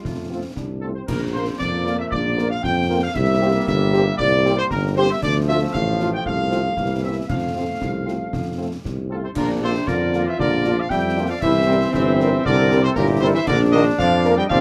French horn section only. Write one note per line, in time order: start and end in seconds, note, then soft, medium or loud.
0.30 0.40 A3 soft
0.30 0.40 C4 soft
0.30 0.39 F4 soft
0.82 0.92 A3 soft
0.82 0.92 C4 soft
0.82 0.92 F4 soft
1.34 1.43 A#3 medium
1.34 1.43 F4 medium
1.34 1.44 A#4 medium
1.85 1.95 A#3 medium
1.85 1.95 F4 medium
1.85 1.95 A#4 medium
2.37 2.47 A#3 medium
2.37 2.47 F4 medium
2.37 2.47 A#4 medium
2.89 2.99 A#3 medium
2.89 2.99 F4 medium
2.89 2.99 A#4 medium
3.41 3.51 A#3 medium
3.41 3.51 C4 medium
3.41 3.51 G4 medium
3.93 4.03 A#3 medium
3.93 4.03 C4 medium
3.93 4.03 G4 medium
4.45 4.54 A#3 medium
4.45 4.54 C4 medium
4.45 4.54 G4 medium
4.96 5.06 A#3 medium
4.96 5.06 C4 medium
4.96 5.06 G4 medium
5.49 5.59 A3 medium
5.49 5.58 F4 medium
6.00 6.10 A3 medium
6.00 6.10 F4 medium
6.52 6.61 A3 medium
6.52 6.61 C4 medium
6.52 6.61 F4 medium
7.04 7.13 A#3 medium
7.04 7.13 C4 medium
7.04 7.13 E4 medium
7.54 7.64 A3 medium
7.54 7.64 C4 medium
7.54 7.64 F4 medium
8.06 8.16 A3 medium
8.06 8.16 C4 medium
8.06 8.16 F4 medium
8.58 8.68 A3 medium
8.58 8.68 C4 medium
8.58 8.68 F4 medium
9.10 9.19 A3 medium
9.10 9.19 C4 medium
9.10 9.19 F4 medium
9.63 9.72 A#3 medium
9.63 9.72 D4 medium
9.63 9.72 F4 medium
10.14 10.23 A#3 medium
10.14 10.23 D4 medium
10.14 10.23 F4 medium
10.66 10.75 A#3 medium
10.66 10.75 D4 medium
10.66 10.75 F4 medium
11.17 11.26 A#3 medium
11.17 11.26 D4 medium
11.17 11.26 F4 medium
11.67 11.77 G3 medium
11.67 11.77 C4 medium
11.67 11.77 A#4 medium
12.20 12.29 G3 medium
12.20 12.29 C4 medium
12.20 12.29 A#4 medium
12.72 12.81 G3 medium
12.72 12.81 C4 medium
12.72 12.81 A#4 medium
13.23 13.32 G3 medium
13.23 13.32 C4 medium
13.23 13.32 A#4 medium
13.74 13.83 A#3 medium
13.74 13.83 D4 medium
13.74 13.83 A#4 loud
14.24 14.34 A#3 medium
14.24 14.34 D4 medium
14.24 14.34 A#4 medium